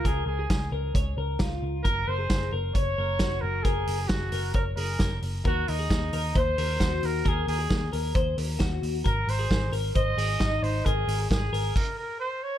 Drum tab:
CC |--------|--------|--------|--------|
HH |x-x-x-x-|x-x-x-x-|xoxoxoxo|xoxoxoxo|
SD |--o---o-|--o---o-|--o---o-|--o---o-|
BD |o-o-o-o-|o-o-o-o-|o-o-o-o-|o-o-o-o-|

CC |--------|--------|----x---|
HH |xoxoxoxo|xoxoxoxo|xoxo----|
SD |--o---o-|--o---o-|--o-----|
BD |o-o-o-o-|o-o-o-o-|o-o-o---|